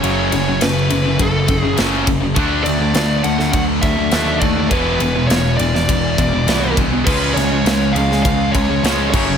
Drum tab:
CC |----------------|----------------|----------------|x-------------x-|
RD |x-x-x-x-x-x-x-x-|x-x-x-x-x-x-x-x-|x-x-x-x-x-x-x-x-|--x-x-x-x-x-x---|
SD |----o-------o---|----o--o----o---|----o--o----o---|--o-o--o----o---|
BD |--------o-o---o-|o-------o-o---o-|o-------o-o---o-|o-------o-o---o-|